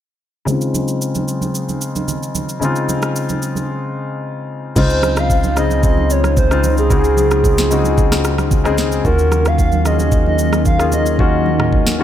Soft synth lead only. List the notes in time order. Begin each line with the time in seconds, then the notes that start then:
4.77 C5
5.18 F5
5.58 D#5
5.85 D#5
6.11 C#5
6.38 C5
6.79 G#4
9.06 A#4
9.47 F5
9.86 D#5
10.27 D#5
10.66 F5
10.93 D#5
11.20 D#5